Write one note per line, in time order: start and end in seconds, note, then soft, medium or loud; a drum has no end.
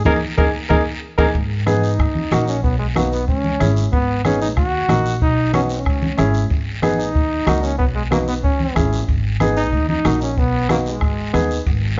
0.05 0.18 D#2 loud
0.05 0.16 A#3 loud
0.05 0.16 D#4 loud
0.05 0.16 G#4 loud
0.05 0.14 A#4 loud
0.05 bombo low loud
0.05 high conga loud
0.05 long guiro loud
0.38 0.50 D#2 loud
0.38 0.48 A#3 medium
0.38 0.48 D#4 medium
0.38 0.48 G#4 loud
0.38 0.45 A#4 medium
0.38 bombo low loud
0.38 high conga loud
0.69 0.82 D#2 medium
0.69 0.80 A#3 loud
0.69 0.80 D#4 loud
0.69 0.80 G#4 loud
0.69 0.77 A#4 medium
0.69 bombo low loud
0.69 high conga loud
1.18 1.30 D#2 medium
1.18 1.29 A#3 loud
1.18 1.29 D#4 medium
1.18 1.29 G#4 loud
1.18 1.26 A#4 loud
1.18 bombo low medium
1.18 high conga loud
1.18 long guiro loud
1.35 2.01 G#2 medium
1.35 bombo low medium
1.35 long guiro medium
1.66 1.89 B3 medium
1.66 1.89 D#4 medium
1.66 1.89 G#4 medium
1.66 bombo rim medium
1.66 high conga medium
1.66 short guiro medium
1.82 2.43 D#4 medium
1.82 short guiro medium
1.99 2.25 D#2 loud
1.99 bombo low medium
1.99 bombo rim medium
1.99 long guiro medium
2.15 high conga medium
2.31 2.64 A#1 loud
2.31 2.54 A#3 medium
2.31 2.54 D#4 medium
2.31 2.54 F#4 medium
2.31 bombo rim medium
2.31 high conga medium
2.31 short guiro medium
2.48 2.63 C#4 medium
2.48 short guiro medium
2.63 3.28 B1 medium
2.63 2.78 B3 medium
2.63 bombo low medium
2.63 long guiro medium
2.79 2.86 G#3 medium
2.95 3.10 A#3 medium
2.95 3.18 B3 medium
2.95 3.18 D#4 medium
2.95 3.18 F#4 medium
2.95 bombo rim medium
2.95 high conga medium
2.95 short guiro medium
3.12 3.27 B3 medium
3.12 short guiro medium
3.28 3.54 C#2 medium
3.28 3.73 C#4 medium
3.28 bombo low medium
3.28 long guiro medium
3.44 high conga medium
3.59 3.86 G#1 loud
3.59 3.82 C#4 medium
3.59 3.83 E4 medium
3.59 3.83 G#4 medium
3.59 bombo rim medium
3.59 high conga medium
3.59 short guiro medium
3.76 short guiro medium
3.93 4.57 G#1 medium
3.93 4.22 B3 loud
3.93 bombo low medium
3.93 long guiro medium
4.25 4.47 B3 medium
4.25 4.40 C#4 medium
4.25 4.47 D#4 medium
4.25 4.47 G#4 medium
4.25 bombo rim medium
4.25 high conga medium
4.25 short guiro medium
4.41 4.49 D#4 medium
4.41 short guiro medium
4.57 4.83 D#2 loud
4.57 5.17 F#4 loud
4.57 bombo low medium
4.57 bombo rim medium
4.57 long guiro medium
4.88 5.22 A#1 loud
4.88 5.11 A#3 medium
4.88 5.12 D#4 medium
4.88 5.12 F#4 medium
4.88 bombo rim medium
4.88 high conga medium
4.88 short guiro medium
5.06 short guiro medium
5.22 5.86 B1 medium
5.22 5.52 D#4 loud
5.22 bombo low medium
5.22 long guiro medium
5.53 5.76 B3 medium
5.53 5.61 C#4 medium
5.53 5.76 D#4 medium
5.53 5.76 F#4 medium
5.53 bombo rim medium
5.53 high conga medium
5.53 short guiro medium
5.69 6.30 C#4 medium
5.69 short guiro medium
5.85 6.12 C#2 medium
5.85 bombo low medium
5.85 bombo rim medium
5.85 long guiro medium
6.02 high conga medium
6.17 6.44 G#1 loud
6.17 6.40 C#4 medium
6.17 6.41 E4 medium
6.17 6.41 G#4 medium
6.17 bombo rim medium
6.17 high conga medium
6.17 short guiro medium
6.34 short guiro medium
6.50 7.15 G#1 medium
6.50 bombo low medium
6.50 long guiro medium
6.82 7.05 B3 medium
6.82 7.05 D#4 medium
6.82 7.05 G#4 medium
6.82 bombo rim medium
6.82 high conga medium
6.82 short guiro medium
6.99 7.65 D#4 medium
6.99 short guiro medium
7.15 7.41 D#2 loud
7.15 bombo low medium
7.15 long guiro medium
7.46 7.80 C#2 loud
7.46 7.69 A#3 medium
7.46 7.69 D#4 medium
7.46 7.70 F#4 medium
7.46 bombo rim medium
7.46 high conga medium
7.46 short guiro medium
7.63 7.78 C#4 medium
7.63 short guiro medium
7.78 8.44 B1 medium
7.78 7.86 B3 medium
7.78 bombo low medium
7.78 long guiro medium
7.95 8.03 G#3 medium
8.11 8.19 A#3 medium
8.11 8.34 B3 medium
8.11 8.34 D#4 medium
8.11 8.34 F#4 medium
8.11 bombo rim medium
8.11 high conga medium
8.11 short guiro medium
8.28 8.35 B3 medium
8.28 short guiro medium
8.44 8.70 C#2 loud
8.44 8.89 C#4 medium
8.44 bombo low medium
8.44 long guiro medium
8.60 high conga medium
8.75 9.02 G#1 loud
8.75 8.98 C#4 medium
8.75 8.99 E4 medium
8.75 8.99 G#4 medium
8.75 bombo low medium
8.75 bombo rim medium
8.75 high conga medium
8.75 short guiro medium
8.93 short guiro medium
9.08 9.73 G#1 medium
9.08 bombo low medium
9.08 long guiro medium
9.40 9.63 B3 medium
9.40 9.63 D#4 medium
9.40 9.63 G#4 medium
9.40 bombo rim medium
9.40 high conga medium
9.40 short guiro medium
9.57 9.87 D#4 loud
9.57 short guiro medium
9.72 9.99 D#2 loud
9.72 bombo low medium
9.72 long guiro medium
9.89 10.19 D#4 loud
9.89 high conga medium
10.04 10.37 A#1 loud
10.04 10.27 A#3 medium
10.04 10.28 D#4 medium
10.04 10.28 F#4 medium
10.04 bombo rim medium
10.04 high conga medium
10.04 short guiro medium
10.21 10.40 C#4 medium
10.21 short guiro medium
10.37 11.02 B1 medium
10.37 10.70 B3 medium
10.37 bombo low medium
10.37 long guiro medium
10.69 10.78 A#3 medium
10.69 10.92 B3 medium
10.69 10.92 D#4 medium
10.69 10.92 F#4 medium
10.69 bombo rim medium
10.69 high conga medium
10.69 short guiro medium
10.86 11.47 G#3 medium
10.86 short guiro medium
11.01 11.28 G#1 loud
11.01 bombo low medium
11.01 bombo rim medium
11.01 long guiro medium
11.33 11.60 D#2 loud
11.33 11.56 B3 medium
11.33 11.57 D#4 medium
11.33 11.57 G#4 medium
11.33 bombo rim medium
11.33 high conga medium
11.33 short guiro medium
11.51 short guiro medium
11.66 12.00 G#1 medium
11.66 bombo low medium
11.66 long guiro medium